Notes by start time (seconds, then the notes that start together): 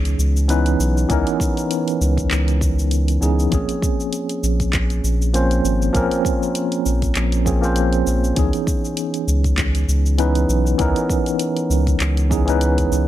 Already playing: C#2 E3 B3 C#4 D#4 G#4
0.05 closed hi-hat, shaker
0.18 C#2, shaker
0.37 shaker
0.48 E3 B3 C#4 D#4 B4, closed hi-hat, shaker
0.66 closed hi-hat, shaker
0.79 B1, shaker
0.97 shaker
1.08 C#2 E3 B3 C#4 D#4 A#4, kick, closed hi-hat, shaker
1.27 closed hi-hat, shaker
1.40 kick, shaker
1.57 closed hi-hat, shaker
1.71 closed hi-hat, shaker
1.88 closed hi-hat, shaker
2.01 C#2, shaker
2.17 kick, closed hi-hat, shaker
2.31 C#2, clap, closed hi-hat, shaker
2.48 closed hi-hat, shaker
2.61 kick, shaker
2.79 shaker
2.91 closed hi-hat, shaker
3.08 closed hi-hat, shaker
3.21 C#2 E3 B3 C#4 D#4 G#4, shaker
3.39 shaker
3.50 A#1 F3 A#3 C4 C#4, kick, closed hi-hat, shaker
3.54 G#4
3.69 closed hi-hat, shaker
3.82 kick, shaker
4.00 shaker
4.13 closed hi-hat, shaker
4.29 closed hi-hat, shaker
4.43 A#1, shaker
4.60 kick, closed hi-hat, shaker
4.73 kick, clap, closed hi-hat, shaker
4.90 closed hi-hat, shaker
5.03 A#1, shaker
5.22 shaker
5.33 F3 A#3 C4 C#4 C5, closed hi-hat, shaker
5.51 closed hi-hat, shaker
5.64 G#1, shaker
5.82 shaker
5.93 A#1 F3 A#3 C4 C#4, kick, closed hi-hat, shaker
5.97 A#4
6.11 closed hi-hat, shaker
6.25 kick, shaker
6.43 shaker
6.55 closed hi-hat, shaker
6.72 closed hi-hat, shaker
6.85 A#1, shaker
7.02 kick, closed hi-hat, shaker
7.15 A#1, clap, closed hi-hat, shaker
7.32 closed hi-hat, shaker
7.45 F3 A#3 C4 C#4 G#4, kick, shaker
7.61 F3 A#3 C4 C#4, shaker
7.65 C5
7.76 closed hi-hat, shaker
7.93 closed hi-hat, shaker
8.06 A#1, shaker
8.24 shaker
8.35 C#2 E3 B3 C#4 D#4 G#4, kick, closed hi-hat, shaker
8.53 closed hi-hat, shaker
8.67 kick, shaker
8.85 shaker
8.97 closed hi-hat, shaker
9.14 closed hi-hat, shaker
9.27 C#2, shaker
9.44 kick, closed hi-hat, shaker
9.58 kick, clap, closed hi-hat, shaker
9.75 closed hi-hat, shaker
9.88 C#2, shaker
10.06 shaker
10.18 E3 B3 C#4 D#4 B4, closed hi-hat, shaker
10.35 closed hi-hat, shaker
10.48 B1, shaker
10.67 shaker
10.78 C#2 E3 B3 C#4 D#4 A#4, kick, closed hi-hat, shaker
10.96 closed hi-hat, shaker
11.10 kick, shaker
11.26 closed hi-hat, shaker
11.39 closed hi-hat, shaker
11.57 closed hi-hat, shaker
11.70 C#2, shaker
11.87 kick, closed hi-hat, shaker
12.00 C#2, clap, closed hi-hat, shaker
12.17 closed hi-hat, shaker
12.30 E3 B3 C#4 D#4 G#4, kick, shaker
12.46 E3 B3 C#4 D#4, closed hi-hat, shaker
12.50 B4
12.61 closed hi-hat, shaker
12.78 kick, closed hi-hat, shaker
12.91 C#2, shaker